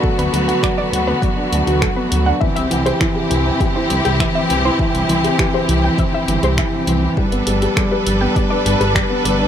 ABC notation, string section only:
X:1
M:4/4
L:1/8
Q:1/4=101
K:Clyd
V:1 name="String section"
[D,A,B,F]8 | [C,CEG]8- | [C,CEG]8 | [G,DAB]8 |]